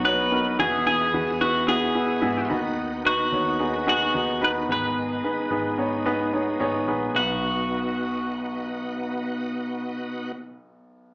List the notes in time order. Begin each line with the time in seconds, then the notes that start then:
Already playing: B1 F#3 B3 D#4 F#4 G#4 B4 C#5
0.04 B3 D#4 F#4 B4 C#5
0.31 B3 D#4 F#4 A#4
0.59 E2 B2 E3 B3 E4 F#4 G#4
0.87 B3 E4 F#4 G#4
1.14 E2 B3 E4 F#4 G#4
1.40 B3 E4 F#4 B4
1.67 B3 E4 F#4 G#4
1.95 B3 E4 F#4 G#4
2.21 G#2 B3 E4 F#4 G#4
2.49 D#2 D#3 B3 D#4 F#4 B4
3.04 B3 D#4 F#4 B4
3.32 D#2 B3 D#4 F#4 C#5
3.59 B3 D#4 F#4 G#4
3.86 B3 D#4 F#4 G#4
4.14 D#2 B3 D#4 F#4 G#4
4.41 B3 D#4 F#4 B4
4.69 G#1 G#2 D#3 G#3 B3 D#4 G#4 B4
5.24 B3 D#4 G#4 B4
5.50 G#1 B3 D#4 G#4 B4
5.78 B3 D#4 G#4 C#5
6.05 B3 D#4 G#4 B4
6.33 B3 D#4 G#4 C#5
6.60 G#1 B3 D#4 G#4 C#5
6.87 A#1 B3 D#4 G#4 B4
7.14 B1 B2 B3 D#4 F#4 B4